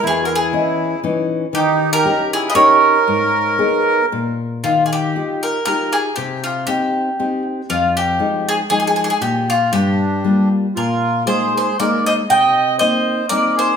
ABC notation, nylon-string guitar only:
X:1
M:3/4
L:1/8
Q:"Swing" 1/4=118
K:G#m
V:1 name="Nylon-string guitar"
E,,2 [E,Cd]2 [E,CD]2 | D,2 [CD=G]2 [CDG]2 | G,,2 [B,DG]2 A,,2 | [K:Eb] E,2 [EFG]2 [EFG]2 |
C,2 [CEG]2 [CEG]2 | F,,2 [F,A,E]2 [F,A,E]2 | B,,2 G,,2 [G,B,F]2 | B,,2 [A,B,E]2 [A,B,E]2 |
C,2 [B,CE]2 [B,CE]2 |]